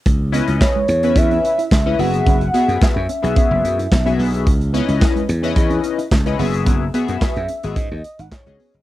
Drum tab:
HH |x-xx--xxxxxx--ox|xxxx--xxx-xx-xox|xxxx-xxxxxxx-xox|x-xx-xxxx-xx-xox|
CP |----x-------x---|----x-------x---|----x-------x---|----x-------x---|
SD |----o-------o---|----o-------o---|----o-------o---|----o-------o---|
BD |o---o---o---o---|o---o---o---o---|o---o---o---o---|o---o---o---o---|